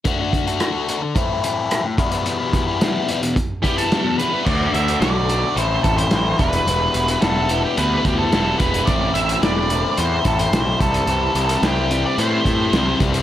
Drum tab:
CC |----------------|----------------|x---------------|----------------|
HH |x-xxx-x-x-x-x-xx|x-x-x-xxx-xxx-x-|--xxx-x-x-xxx-xx|x-xxx-x-x-x-x-xx|
SD |----r-------r---|----o-------o---|----o-------o---|----o-------o---|
BD |o-o-----o-----o-|--o-----o-o-----|o---------o---o-|----------o---o-|

CC |----------------|----------------|
HH |x-xxx-x-x-xxx-xx|x-xxx-x-x-x-x-xx|
SD |----o-------o---|----o-------o---|
BD |o---------o---o-|----------o---o-|